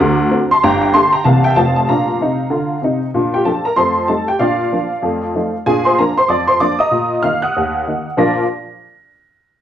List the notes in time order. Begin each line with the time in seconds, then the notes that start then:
Already playing: A#5 D6
0.00 D2 D3
0.31 D3 C4 F#4
0.51 A5 C6
0.63 G1 G2 G5 A#5
0.81 G5 A#5
0.94 D3 A#3 G4 A5 C6
1.12 G5 A#5
1.24 C2 C3 E3 A#3 G4 F5 A5
1.44 E5 G5
1.56 F1 F2 F3 C4 F4 F5 A5
1.76 F5 A5
1.89 A#2 D4 F5 A#5
2.20 C3 D#4
2.50 D3 F4
2.82 C3 D#4
3.14 A#2 D4
3.34 G4 G5
3.45 F3 D4 F4 A4 A5
3.65 A#4 A#5
3.76 F2 A3 C5 A5 C6
4.08 G3 A3 D#4 A4 A5
4.28 G4 G5
4.39 A#2 D4 F4 D5 F5
4.72 F3 A#3 D4
5.02 F2 A3
5.35 F3 A3 D#4
5.66 A#2 D4 G#4 G#5
5.85 C5 C6
5.99 F3 A#3 D4 A#4 A#5
6.18 C5 C6
6.28 F2 D5 D6
6.48 C5 C6
6.60 F3 A#3 D4 D5 D6
6.79 D#5 A#5 D#6
6.91 A#2
7.23 D#3 A#3 D#4 F5 F6
7.42 F#5 D#6 F#6
7.56 D#2
7.87 D#3 A#3 D#4
8.17 A#2 F3 D4 F4 A#4 D5 A#6